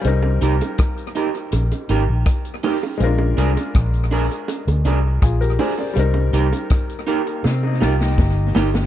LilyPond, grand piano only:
\new Staff \with { instrumentName = "Grand piano" } { \time 4/4 \key c \phrygian \tempo 4 = 81 << { <f'' aes''>16 r2. r8. | r2. <f' aes'>16 <g' bes'>16 <aes' c''>16 <bes' d''>16~ | <bes' d''>16 r2. r8. | } \\ { <g c' ees' bes'>1 | <aes c' d' f' bes'>1 | <g c' ees' bes'>1 | } >> }